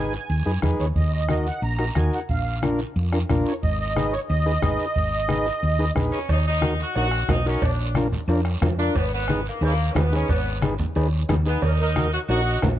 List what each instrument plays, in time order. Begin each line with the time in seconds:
Already playing: fingered electric bass G#1, transistor combo organ D#4 G#4 B4, accordion G#5
0.13 short guiro
0.30 fingered electric bass D#2, high conga, long guiro
0.46 fingered electric bass F#2, transistor combo organ D#4 G#4 B4
0.62 fingered electric bass F2, transistor combo organ D#4 G#4 B4, bombo low, bombo rim, high conga, short guiro
0.80 fingered electric bass D#2, accordion C#5, short guiro
0.96 fingered electric bass D#2, accordion D#5, bombo low, long guiro
1.13 accordion D#5
1.29 transistor combo organ D#4 F#4 A#4, accordion D#5, bombo rim, high conga, short guiro
1.46 accordion F#5, short guiro
1.62 fingered electric bass A#1, accordion A#5, high conga, long guiro
1.79 transistor combo organ D#4 F#4 A#4, bombo rim
1.95 fingered electric bass D#2, transistor combo organ D#4 F#4 A#4, accordion G#5, bombo low, bombo rim, high conga, short guiro
2.13 accordion F#5, short guiro
2.29 fingered electric bass A#1, accordion F5, bombo low, high conga, long guiro
2.62 transistor combo organ D4 F4 A#4, bombo rim, high conga, short guiro
2.79 short guiro
2.96 fingered electric bass F2, high conga, long guiro
3.12 transistor combo organ D4 F4 A#4, bombo rim
3.29 fingered electric bass A#1, transistor combo organ D4 F4 A#4, bombo low, bombo rim, high conga, short guiro
3.46 accordion C#5, short guiro
3.63 fingered electric bass G#1, accordion D#5, bombo low, high conga, long guiro
3.80 accordion D#5
3.96 transistor combo organ D#4 G#4 B4, bombo rim, high conga, short guiro
4.12 accordion C#5, short guiro
4.29 fingered electric bass D#2, accordion D#5, high conga, long guiro
4.46 transistor combo organ D#4 G#4 B4
4.62 fingered electric bass G#1, transistor combo organ D#4 G#4 B4, bombo low, bombo rim, high conga, short guiro
4.79 short guiro
4.96 fingered electric bass G#1, bombo low, high conga, long guiro
5.28 transistor combo organ D#4 G#4 B4, bombo rim, high conga, short guiro
5.46 short guiro
5.63 fingered electric bass D#2, high conga, long guiro
5.79 transistor combo organ D#4 G#4 B4
5.95 fingered electric bass A#1, transistor combo organ D#4 G#4 B4, bombo low, bombo rim, high conga, short guiro
6.12 saxophone section C#4, short guiro
6.29 fingered electric bass D#2, saxophone section D#4, bombo low, cowbell, high conga, long guiro
6.47 saxophone section D#4
6.61 transistor combo organ D#4 F#4 A#4, bombo rim, cowbell, high conga, short guiro
6.80 saxophone section F#4, short guiro
6.96 fingered electric bass A#1, transistor combo organ D#4 F#4 A#4, saxophone section F#4, cowbell, high conga, long guiro
7.11 bombo rim
7.28 fingered electric bass B1, transistor combo organ D#4 F#4 A#4, saxophone section D#4, bombo low, bombo rim, cowbell, high conga, low timbale, short guiro
7.46 saxophone section C#4, transistor combo organ D#4 F#4 A#4, short guiro
7.62 fingered electric bass A#1, saxophone section D4, bombo low, cowbell, high conga, long guiro
7.95 transistor combo organ D4 F4 A#4, bombo rim, cowbell, high conga, short guiro
8.12 low conga, short guiro
8.28 fingered electric bass F2, transistor combo organ D4 F4 A#4, cowbell, high conga, long guiro
8.45 bombo rim
8.62 fingered electric bass F2, transistor combo organ D4 F4 A#4, bombo low, bombo rim, cowbell, high conga, low conga, low timbale, short guiro
8.79 transistor combo organ D4 F4 A#4, saxophone section D4, short guiro
8.95 fingered electric bass G#1, saxophone section B3, bombo low, cowbell, long guiro
9.14 saxophone section B3
9.28 transistor combo organ D#4 G#4 B4, bombo rim, cowbell, high conga, short guiro
9.46 saxophone section A#3, short guiro
9.61 fingered electric bass D#2, transistor combo organ D#4 G#4 B4, cowbell, long guiro
9.65 saxophone section A#3
9.92 fingered electric bass D#2, saxophone section C#4, transistor combo organ D#4 G#4 B4, bombo low, high conga, short guiro
9.96 saxophone section B3, bombo rim, cowbell, low timbale
10.12 saxophone section C#4, transistor combo organ D#4 G#4 B4, short guiro
10.28 fingered electric bass G#1, saxophone section B3, bombo low, cowbell, high conga, long guiro
10.62 transistor combo organ D#4 G#4 B4, bombo rim, cowbell, high conga, short guiro
10.78 low conga, short guiro
10.95 fingered electric bass D#2, transistor combo organ D#4 G#4 B4, cowbell, long guiro
11.29 fingered electric bass D#2, transistor combo organ D#4 G#4 B4, bombo low, bombo rim, cowbell, high conga, low conga, short guiro
11.46 saxophone section B3, transistor combo organ D#4 G#4 B4, accordion G#4, short guiro
11.62 fingered electric bass D#2, saxophone section D#4, accordion A#4, bombo low, cowbell, high conga, long guiro
11.79 saxophone section D#4, accordion A#4
11.96 transistor combo organ D#4 F#4 A#4, bombo rim, cowbell, high conga, short guiro
12.13 saxophone section F#4, accordion C#5, short guiro
12.29 fingered electric bass A#1, transistor combo organ D#4 F#4 A#4, saxophone section F#4, accordion D#5, cowbell, high conga, long guiro
12.62 fingered electric bass A#1, transistor combo organ D#4 F#4 A#4, bombo low, bombo rim, cowbell, high conga, low timbale, short guiro